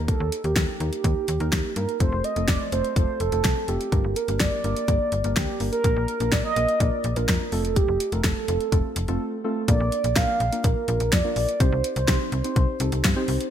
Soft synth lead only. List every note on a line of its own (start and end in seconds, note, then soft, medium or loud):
0.08 0.42 A4 loud
0.44 0.56 G4 medium
0.57 1.72 G4 loud
1.76 1.99 A#4 medium
2.00 2.26 C5 loud
2.24 2.50 D#5 loud
2.48 2.72 D5 loud
2.72 2.95 C5 loud
2.96 3.22 C5 loud
3.20 3.70 A4 loud
3.68 4.18 G4 loud
4.16 4.40 A#4 medium
4.40 5.32 D5 loud
5.36 5.70 G4 medium
5.72 6.34 A#4 loud
6.32 6.44 D5 loud
6.44 6.82 D#5 loud
6.80 7.18 D5 loud
7.16 7.54 A#4 loud
7.52 7.64 A4 medium
7.64 7.78 A4 medium
7.76 8.14 G4 medium
8.12 8.26 A#4 medium
8.24 9.44 A4 medium
9.68 10.18 D5 loud
10.16 10.66 F5 loud
10.64 11.14 A#4 loud
11.12 11.36 D5 loud
11.36 11.62 D5 loud
11.60 11.96 C5 loud
11.96 12.30 C5 medium
12.32 13.24 C5 loud